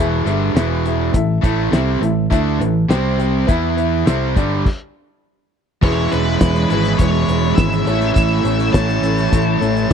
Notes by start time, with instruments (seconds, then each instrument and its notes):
Already playing: fingered electric bass E1, overdriven electric guitar E2 B2 E3, upright piano G#4 B4 E5
0.24 fingered electric bass G1, overdriven electric guitar G2 D3 G3, upright piano G#4 B4 E5, closed hi-hat
0.54 fingered electric bass E1, overdriven electric guitar E2 B2 E3, upright piano G#4 B4 E5, snare, closed hi-hat
0.85 upright piano G#4 B4 E5, closed hi-hat
1.13 fingered electric bass A1, overdriven electric guitar A2 E3, upright piano E4 A4 E5, kick, closed hi-hat
1.41 fingered electric bass A1, overdriven electric guitar A2 E3 A3, upright piano E4 A4 E5, kick, closed hi-hat
1.71 fingered electric bass C2, overdriven electric guitar C3 G3 C4, upright piano E4 A4 E5, snare, closed hi-hat
2.01 fingered electric bass A1, overdriven electric guitar A2 E3, upright piano E4 A4 E5, closed hi-hat
2.30 fingered electric bass D2, overdriven electric guitar D3 A3 D4, upright piano E4 A4 E5, kick, closed hi-hat
2.59 fingered electric bass A1, overdriven electric guitar A2 E3, upright piano E4 A4 B4, closed hi-hat
2.89 fingered electric bass C2, overdriven electric guitar C3 G3 C4, upright piano G4 C5 G5, snare, closed hi-hat
3.17 upright piano G4 C5 G5, closed hi-hat
3.47 fingered electric bass E2, overdriven electric guitar E3 B3 E4, upright piano E4 B4 E5, kick, closed hi-hat
3.76 upright piano E4 B4 E5, closed hi-hat
4.05 fingered electric bass C2, overdriven electric guitar C3 G3 C4, upright piano E4 A4 E5, snare, closed hi-hat
4.35 fingered electric bass G1, overdriven electric guitar G2 D3 G3, upright piano D4 G4 D5, kick, snare, closed hi-hat
4.66 kick, crash
5.82 fingered electric bass E1, overdriven electric guitar E2 B2 E3 G#3 B3 E4, upright piano C#4 E4 G#4 B4, string machine E4 G#4 C#5, lead electric guitar C#5, kick, crash
6.10 fingered electric bass E1, upright piano C#4 E4 G#4 B4, lead electric guitar B4, closed hi-hat
6.41 fingered electric bass E1, upright piano C#4 E4 G#4 B4, kick, snare, closed hi-hat
6.56 closed hi-hat
6.69 fingered electric bass G#1, overdriven electric guitar B2 E3 G#3 B3 E4, upright piano C#4 E4 G#4 B4, lead electric guitar B4, closed hi-hat
6.73 overdriven electric guitar E2
6.84 closed hi-hat
6.98 fingered electric bass E1, upright piano C#4 E4 G#4 B4, lead electric guitar C#5, kick, closed hi-hat
7.28 fingered electric bass E1, upright piano C#4 E4 G#4 B4, closed hi-hat
7.55 fingered electric bass G#1, upright piano C#4 E4 G#4 B4, lead electric guitar E5, kick, snare, closed hi-hat
7.72 closed hi-hat
7.86 fingered electric bass A1, overdriven electric guitar A2 E3 A3 C#4 E4, upright piano C#4 E4 A4 C#5, string machine E4 A4 C#5, closed hi-hat
8.01 closed hi-hat
8.14 fingered electric bass A1, lead electric guitar E5, kick, closed hi-hat
8.43 fingered electric bass A1, upright piano C#4 E4 A4 C#5, closed hi-hat
8.60 snare, closed hi-hat
8.72 fingered electric bass A1, overdriven electric guitar A2 E3 A3 C#4 E4, upright piano C#4 E4 A4 C#5, lead electric guitar A5, kick, snare, closed hi-hat
8.89 closed hi-hat
9.02 fingered electric bass A1, upright piano C#4 E4 A4 C#5, closed hi-hat
9.18 closed hi-hat
9.32 fingered electric bass A1, upright piano C#4 E4 A4 C#5, kick, closed hi-hat
9.61 fingered electric bass A1, upright piano C#4 E4 A4 C#5, closed hi-hat
9.77 closed hi-hat
9.90 overdriven electric guitar A2